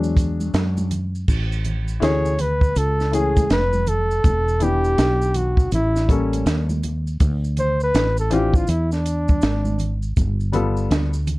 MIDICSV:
0, 0, Header, 1, 5, 480
1, 0, Start_track
1, 0, Key_signature, 3, "major"
1, 0, Tempo, 740741
1, 830, Time_signature, 4, 2, 24, 8
1, 7379, End_track
2, 0, Start_track
2, 0, Title_t, "Flugelhorn"
2, 0, Program_c, 0, 56
2, 1320, Note_on_c, 0, 73, 100
2, 1563, Note_on_c, 0, 71, 98
2, 1573, Note_off_c, 0, 73, 0
2, 1800, Note_on_c, 0, 69, 99
2, 1809, Note_off_c, 0, 71, 0
2, 2035, Note_off_c, 0, 69, 0
2, 2041, Note_on_c, 0, 68, 85
2, 2259, Note_off_c, 0, 68, 0
2, 2281, Note_on_c, 0, 71, 97
2, 2517, Note_on_c, 0, 69, 99
2, 2527, Note_off_c, 0, 71, 0
2, 3002, Note_on_c, 0, 67, 97
2, 3011, Note_off_c, 0, 69, 0
2, 3479, Note_on_c, 0, 66, 77
2, 3489, Note_off_c, 0, 67, 0
2, 3715, Note_off_c, 0, 66, 0
2, 3720, Note_on_c, 0, 64, 90
2, 3960, Note_on_c, 0, 61, 77
2, 3969, Note_off_c, 0, 64, 0
2, 4195, Note_off_c, 0, 61, 0
2, 4919, Note_on_c, 0, 72, 101
2, 5056, Note_off_c, 0, 72, 0
2, 5076, Note_on_c, 0, 71, 101
2, 5293, Note_off_c, 0, 71, 0
2, 5310, Note_on_c, 0, 69, 88
2, 5399, Note_on_c, 0, 67, 85
2, 5408, Note_off_c, 0, 69, 0
2, 5549, Note_on_c, 0, 65, 82
2, 5558, Note_off_c, 0, 67, 0
2, 5634, Note_on_c, 0, 64, 84
2, 5644, Note_off_c, 0, 65, 0
2, 5782, Note_off_c, 0, 64, 0
2, 5785, Note_on_c, 0, 62, 81
2, 6478, Note_off_c, 0, 62, 0
2, 7379, End_track
3, 0, Start_track
3, 0, Title_t, "Grand piano"
3, 0, Program_c, 1, 0
3, 0, Note_on_c, 1, 54, 51
3, 0, Note_on_c, 1, 56, 42
3, 0, Note_on_c, 1, 62, 59
3, 561, Note_off_c, 1, 54, 0
3, 563, Note_off_c, 1, 56, 0
3, 565, Note_off_c, 1, 62, 0
3, 1297, Note_on_c, 1, 52, 80
3, 1305, Note_on_c, 1, 57, 67
3, 1310, Note_on_c, 1, 61, 72
3, 1316, Note_on_c, 1, 68, 88
3, 1491, Note_off_c, 1, 52, 0
3, 1494, Note_off_c, 1, 57, 0
3, 1497, Note_off_c, 1, 61, 0
3, 1500, Note_off_c, 1, 68, 0
3, 2019, Note_on_c, 1, 52, 65
3, 2025, Note_on_c, 1, 57, 64
3, 2030, Note_on_c, 1, 61, 57
3, 2036, Note_on_c, 1, 68, 76
3, 2212, Note_off_c, 1, 52, 0
3, 2215, Note_off_c, 1, 57, 0
3, 2217, Note_off_c, 1, 61, 0
3, 2220, Note_off_c, 1, 68, 0
3, 2979, Note_on_c, 1, 52, 64
3, 2985, Note_on_c, 1, 59, 54
3, 2991, Note_on_c, 1, 62, 55
3, 2996, Note_on_c, 1, 67, 69
3, 3669, Note_off_c, 1, 52, 0
3, 3672, Note_off_c, 1, 59, 0
3, 3676, Note_off_c, 1, 62, 0
3, 3678, Note_off_c, 1, 67, 0
3, 3942, Note_on_c, 1, 55, 64
3, 3947, Note_on_c, 1, 58, 66
3, 3952, Note_on_c, 1, 61, 68
3, 3958, Note_on_c, 1, 69, 72
3, 4308, Note_off_c, 1, 55, 0
3, 4310, Note_off_c, 1, 58, 0
3, 4313, Note_off_c, 1, 61, 0
3, 4315, Note_off_c, 1, 69, 0
3, 5380, Note_on_c, 1, 52, 71
3, 5386, Note_on_c, 1, 60, 64
3, 5392, Note_on_c, 1, 62, 63
3, 5398, Note_on_c, 1, 65, 80
3, 5572, Note_off_c, 1, 52, 0
3, 5575, Note_off_c, 1, 60, 0
3, 5578, Note_off_c, 1, 62, 0
3, 5581, Note_off_c, 1, 65, 0
3, 6819, Note_on_c, 1, 55, 73
3, 6824, Note_on_c, 1, 59, 68
3, 6830, Note_on_c, 1, 65, 64
3, 6835, Note_on_c, 1, 69, 83
3, 7186, Note_off_c, 1, 55, 0
3, 7189, Note_off_c, 1, 59, 0
3, 7192, Note_off_c, 1, 65, 0
3, 7194, Note_off_c, 1, 69, 0
3, 7379, End_track
4, 0, Start_track
4, 0, Title_t, "Fretless electric bass"
4, 0, Program_c, 2, 35
4, 0, Note_on_c, 2, 40, 106
4, 325, Note_off_c, 2, 40, 0
4, 349, Note_on_c, 2, 42, 96
4, 805, Note_off_c, 2, 42, 0
4, 830, Note_on_c, 2, 33, 91
4, 1286, Note_off_c, 2, 33, 0
4, 1309, Note_on_c, 2, 38, 91
4, 1766, Note_off_c, 2, 38, 0
4, 1790, Note_on_c, 2, 37, 87
4, 2246, Note_off_c, 2, 37, 0
4, 2270, Note_on_c, 2, 29, 97
4, 2726, Note_off_c, 2, 29, 0
4, 2749, Note_on_c, 2, 28, 110
4, 3205, Note_off_c, 2, 28, 0
4, 3228, Note_on_c, 2, 35, 88
4, 3685, Note_off_c, 2, 35, 0
4, 3707, Note_on_c, 2, 33, 95
4, 4165, Note_off_c, 2, 33, 0
4, 4186, Note_on_c, 2, 39, 96
4, 4644, Note_off_c, 2, 39, 0
4, 4668, Note_on_c, 2, 38, 101
4, 5125, Note_off_c, 2, 38, 0
4, 5147, Note_on_c, 2, 33, 99
4, 5605, Note_off_c, 2, 33, 0
4, 5627, Note_on_c, 2, 40, 88
4, 6085, Note_off_c, 2, 40, 0
4, 6110, Note_on_c, 2, 32, 88
4, 6566, Note_off_c, 2, 32, 0
4, 6589, Note_on_c, 2, 31, 103
4, 7046, Note_off_c, 2, 31, 0
4, 7067, Note_on_c, 2, 38, 87
4, 7379, Note_off_c, 2, 38, 0
4, 7379, End_track
5, 0, Start_track
5, 0, Title_t, "Drums"
5, 24, Note_on_c, 9, 82, 43
5, 89, Note_off_c, 9, 82, 0
5, 107, Note_on_c, 9, 36, 88
5, 110, Note_on_c, 9, 42, 74
5, 119, Note_on_c, 9, 82, 47
5, 172, Note_off_c, 9, 36, 0
5, 175, Note_off_c, 9, 42, 0
5, 184, Note_off_c, 9, 82, 0
5, 262, Note_on_c, 9, 63, 62
5, 262, Note_on_c, 9, 82, 46
5, 327, Note_off_c, 9, 63, 0
5, 327, Note_off_c, 9, 82, 0
5, 349, Note_on_c, 9, 82, 55
5, 352, Note_on_c, 9, 42, 70
5, 354, Note_on_c, 9, 38, 112
5, 414, Note_off_c, 9, 82, 0
5, 416, Note_off_c, 9, 42, 0
5, 419, Note_off_c, 9, 38, 0
5, 501, Note_on_c, 9, 63, 65
5, 501, Note_on_c, 9, 82, 45
5, 566, Note_off_c, 9, 63, 0
5, 566, Note_off_c, 9, 82, 0
5, 589, Note_on_c, 9, 42, 67
5, 591, Note_on_c, 9, 64, 65
5, 591, Note_on_c, 9, 82, 41
5, 654, Note_off_c, 9, 42, 0
5, 656, Note_off_c, 9, 64, 0
5, 656, Note_off_c, 9, 82, 0
5, 745, Note_on_c, 9, 82, 37
5, 810, Note_off_c, 9, 82, 0
5, 829, Note_on_c, 9, 49, 81
5, 830, Note_on_c, 9, 36, 97
5, 836, Note_on_c, 9, 82, 57
5, 894, Note_off_c, 9, 49, 0
5, 895, Note_off_c, 9, 36, 0
5, 901, Note_off_c, 9, 82, 0
5, 986, Note_on_c, 9, 82, 39
5, 1051, Note_off_c, 9, 82, 0
5, 1066, Note_on_c, 9, 42, 56
5, 1070, Note_on_c, 9, 64, 59
5, 1070, Note_on_c, 9, 82, 41
5, 1131, Note_off_c, 9, 42, 0
5, 1134, Note_off_c, 9, 64, 0
5, 1134, Note_off_c, 9, 82, 0
5, 1217, Note_on_c, 9, 82, 43
5, 1282, Note_off_c, 9, 82, 0
5, 1312, Note_on_c, 9, 42, 77
5, 1313, Note_on_c, 9, 82, 54
5, 1316, Note_on_c, 9, 38, 109
5, 1377, Note_off_c, 9, 42, 0
5, 1378, Note_off_c, 9, 82, 0
5, 1381, Note_off_c, 9, 38, 0
5, 1461, Note_on_c, 9, 82, 52
5, 1526, Note_off_c, 9, 82, 0
5, 1547, Note_on_c, 9, 42, 78
5, 1548, Note_on_c, 9, 64, 56
5, 1548, Note_on_c, 9, 82, 43
5, 1612, Note_off_c, 9, 42, 0
5, 1613, Note_off_c, 9, 64, 0
5, 1613, Note_off_c, 9, 82, 0
5, 1693, Note_on_c, 9, 36, 85
5, 1706, Note_on_c, 9, 82, 38
5, 1758, Note_off_c, 9, 36, 0
5, 1771, Note_off_c, 9, 82, 0
5, 1787, Note_on_c, 9, 82, 55
5, 1791, Note_on_c, 9, 42, 83
5, 1851, Note_off_c, 9, 82, 0
5, 1855, Note_off_c, 9, 42, 0
5, 1945, Note_on_c, 9, 82, 40
5, 1948, Note_on_c, 9, 38, 38
5, 2009, Note_off_c, 9, 82, 0
5, 2012, Note_off_c, 9, 38, 0
5, 2031, Note_on_c, 9, 42, 74
5, 2037, Note_on_c, 9, 82, 50
5, 2095, Note_off_c, 9, 42, 0
5, 2102, Note_off_c, 9, 82, 0
5, 2180, Note_on_c, 9, 63, 58
5, 2180, Note_on_c, 9, 82, 45
5, 2182, Note_on_c, 9, 36, 90
5, 2184, Note_on_c, 9, 42, 50
5, 2245, Note_off_c, 9, 63, 0
5, 2245, Note_off_c, 9, 82, 0
5, 2247, Note_off_c, 9, 36, 0
5, 2249, Note_off_c, 9, 42, 0
5, 2268, Note_on_c, 9, 82, 51
5, 2270, Note_on_c, 9, 42, 69
5, 2273, Note_on_c, 9, 38, 99
5, 2333, Note_off_c, 9, 82, 0
5, 2335, Note_off_c, 9, 42, 0
5, 2338, Note_off_c, 9, 38, 0
5, 2416, Note_on_c, 9, 63, 59
5, 2416, Note_on_c, 9, 82, 42
5, 2481, Note_off_c, 9, 63, 0
5, 2481, Note_off_c, 9, 82, 0
5, 2506, Note_on_c, 9, 64, 58
5, 2506, Note_on_c, 9, 82, 43
5, 2508, Note_on_c, 9, 42, 62
5, 2570, Note_off_c, 9, 64, 0
5, 2570, Note_off_c, 9, 82, 0
5, 2573, Note_off_c, 9, 42, 0
5, 2663, Note_on_c, 9, 82, 42
5, 2728, Note_off_c, 9, 82, 0
5, 2748, Note_on_c, 9, 42, 68
5, 2749, Note_on_c, 9, 36, 100
5, 2752, Note_on_c, 9, 82, 55
5, 2813, Note_off_c, 9, 42, 0
5, 2814, Note_off_c, 9, 36, 0
5, 2817, Note_off_c, 9, 82, 0
5, 2904, Note_on_c, 9, 82, 39
5, 2969, Note_off_c, 9, 82, 0
5, 2983, Note_on_c, 9, 42, 62
5, 2990, Note_on_c, 9, 64, 62
5, 2990, Note_on_c, 9, 82, 44
5, 3048, Note_off_c, 9, 42, 0
5, 3055, Note_off_c, 9, 64, 0
5, 3055, Note_off_c, 9, 82, 0
5, 3139, Note_on_c, 9, 82, 40
5, 3204, Note_off_c, 9, 82, 0
5, 3228, Note_on_c, 9, 42, 85
5, 3233, Note_on_c, 9, 38, 103
5, 3234, Note_on_c, 9, 82, 53
5, 3293, Note_off_c, 9, 42, 0
5, 3297, Note_off_c, 9, 38, 0
5, 3299, Note_off_c, 9, 82, 0
5, 3380, Note_on_c, 9, 82, 56
5, 3444, Note_off_c, 9, 82, 0
5, 3463, Note_on_c, 9, 42, 79
5, 3467, Note_on_c, 9, 64, 60
5, 3467, Note_on_c, 9, 82, 43
5, 3527, Note_off_c, 9, 42, 0
5, 3532, Note_off_c, 9, 64, 0
5, 3532, Note_off_c, 9, 82, 0
5, 3610, Note_on_c, 9, 36, 92
5, 3624, Note_on_c, 9, 82, 41
5, 3675, Note_off_c, 9, 36, 0
5, 3689, Note_off_c, 9, 82, 0
5, 3704, Note_on_c, 9, 82, 63
5, 3706, Note_on_c, 9, 42, 78
5, 3769, Note_off_c, 9, 82, 0
5, 3771, Note_off_c, 9, 42, 0
5, 3863, Note_on_c, 9, 82, 48
5, 3864, Note_on_c, 9, 38, 37
5, 3928, Note_off_c, 9, 82, 0
5, 3929, Note_off_c, 9, 38, 0
5, 3946, Note_on_c, 9, 36, 86
5, 3948, Note_on_c, 9, 42, 69
5, 3958, Note_on_c, 9, 82, 50
5, 4010, Note_off_c, 9, 36, 0
5, 4013, Note_off_c, 9, 42, 0
5, 4023, Note_off_c, 9, 82, 0
5, 4103, Note_on_c, 9, 42, 53
5, 4104, Note_on_c, 9, 63, 55
5, 4104, Note_on_c, 9, 82, 40
5, 4168, Note_off_c, 9, 42, 0
5, 4169, Note_off_c, 9, 63, 0
5, 4169, Note_off_c, 9, 82, 0
5, 4189, Note_on_c, 9, 82, 55
5, 4190, Note_on_c, 9, 42, 69
5, 4192, Note_on_c, 9, 38, 104
5, 4253, Note_off_c, 9, 82, 0
5, 4255, Note_off_c, 9, 42, 0
5, 4257, Note_off_c, 9, 38, 0
5, 4338, Note_on_c, 9, 63, 59
5, 4338, Note_on_c, 9, 82, 45
5, 4403, Note_off_c, 9, 63, 0
5, 4403, Note_off_c, 9, 82, 0
5, 4428, Note_on_c, 9, 64, 65
5, 4428, Note_on_c, 9, 82, 43
5, 4429, Note_on_c, 9, 42, 68
5, 4493, Note_off_c, 9, 64, 0
5, 4493, Note_off_c, 9, 82, 0
5, 4494, Note_off_c, 9, 42, 0
5, 4582, Note_on_c, 9, 82, 39
5, 4647, Note_off_c, 9, 82, 0
5, 4667, Note_on_c, 9, 42, 78
5, 4668, Note_on_c, 9, 82, 58
5, 4669, Note_on_c, 9, 36, 92
5, 4732, Note_off_c, 9, 42, 0
5, 4733, Note_off_c, 9, 36, 0
5, 4733, Note_off_c, 9, 82, 0
5, 4823, Note_on_c, 9, 82, 42
5, 4888, Note_off_c, 9, 82, 0
5, 4904, Note_on_c, 9, 42, 56
5, 4909, Note_on_c, 9, 64, 60
5, 4909, Note_on_c, 9, 82, 46
5, 4969, Note_off_c, 9, 42, 0
5, 4973, Note_off_c, 9, 64, 0
5, 4973, Note_off_c, 9, 82, 0
5, 5056, Note_on_c, 9, 82, 41
5, 5120, Note_off_c, 9, 82, 0
5, 5149, Note_on_c, 9, 82, 60
5, 5151, Note_on_c, 9, 42, 83
5, 5156, Note_on_c, 9, 38, 105
5, 5214, Note_off_c, 9, 82, 0
5, 5216, Note_off_c, 9, 42, 0
5, 5220, Note_off_c, 9, 38, 0
5, 5296, Note_on_c, 9, 82, 52
5, 5361, Note_off_c, 9, 82, 0
5, 5384, Note_on_c, 9, 42, 73
5, 5384, Note_on_c, 9, 64, 57
5, 5384, Note_on_c, 9, 82, 44
5, 5448, Note_off_c, 9, 64, 0
5, 5448, Note_off_c, 9, 82, 0
5, 5449, Note_off_c, 9, 42, 0
5, 5531, Note_on_c, 9, 36, 86
5, 5541, Note_on_c, 9, 82, 43
5, 5596, Note_off_c, 9, 36, 0
5, 5606, Note_off_c, 9, 82, 0
5, 5619, Note_on_c, 9, 82, 67
5, 5629, Note_on_c, 9, 42, 81
5, 5684, Note_off_c, 9, 82, 0
5, 5694, Note_off_c, 9, 42, 0
5, 5778, Note_on_c, 9, 82, 44
5, 5786, Note_on_c, 9, 38, 35
5, 5843, Note_off_c, 9, 82, 0
5, 5851, Note_off_c, 9, 38, 0
5, 5869, Note_on_c, 9, 42, 67
5, 5871, Note_on_c, 9, 82, 52
5, 5933, Note_off_c, 9, 42, 0
5, 5936, Note_off_c, 9, 82, 0
5, 6014, Note_on_c, 9, 63, 55
5, 6014, Note_on_c, 9, 82, 46
5, 6021, Note_on_c, 9, 36, 91
5, 6079, Note_off_c, 9, 63, 0
5, 6079, Note_off_c, 9, 82, 0
5, 6086, Note_off_c, 9, 36, 0
5, 6101, Note_on_c, 9, 82, 52
5, 6109, Note_on_c, 9, 42, 66
5, 6112, Note_on_c, 9, 38, 113
5, 6166, Note_off_c, 9, 82, 0
5, 6174, Note_off_c, 9, 42, 0
5, 6176, Note_off_c, 9, 38, 0
5, 6254, Note_on_c, 9, 63, 59
5, 6254, Note_on_c, 9, 82, 42
5, 6319, Note_off_c, 9, 63, 0
5, 6319, Note_off_c, 9, 82, 0
5, 6342, Note_on_c, 9, 64, 60
5, 6342, Note_on_c, 9, 82, 39
5, 6349, Note_on_c, 9, 42, 62
5, 6407, Note_off_c, 9, 64, 0
5, 6407, Note_off_c, 9, 82, 0
5, 6414, Note_off_c, 9, 42, 0
5, 6496, Note_on_c, 9, 82, 38
5, 6561, Note_off_c, 9, 82, 0
5, 6587, Note_on_c, 9, 82, 57
5, 6590, Note_on_c, 9, 36, 99
5, 6590, Note_on_c, 9, 42, 69
5, 6652, Note_off_c, 9, 82, 0
5, 6655, Note_off_c, 9, 36, 0
5, 6655, Note_off_c, 9, 42, 0
5, 6740, Note_on_c, 9, 82, 38
5, 6805, Note_off_c, 9, 82, 0
5, 6826, Note_on_c, 9, 42, 56
5, 6826, Note_on_c, 9, 64, 63
5, 6826, Note_on_c, 9, 82, 40
5, 6891, Note_off_c, 9, 42, 0
5, 6891, Note_off_c, 9, 64, 0
5, 6891, Note_off_c, 9, 82, 0
5, 6977, Note_on_c, 9, 82, 43
5, 7042, Note_off_c, 9, 82, 0
5, 7070, Note_on_c, 9, 82, 55
5, 7072, Note_on_c, 9, 42, 86
5, 7076, Note_on_c, 9, 38, 116
5, 7135, Note_off_c, 9, 82, 0
5, 7136, Note_off_c, 9, 42, 0
5, 7141, Note_off_c, 9, 38, 0
5, 7216, Note_on_c, 9, 82, 53
5, 7281, Note_off_c, 9, 82, 0
5, 7304, Note_on_c, 9, 64, 62
5, 7304, Note_on_c, 9, 82, 43
5, 7305, Note_on_c, 9, 42, 76
5, 7368, Note_off_c, 9, 64, 0
5, 7368, Note_off_c, 9, 82, 0
5, 7370, Note_off_c, 9, 42, 0
5, 7379, End_track
0, 0, End_of_file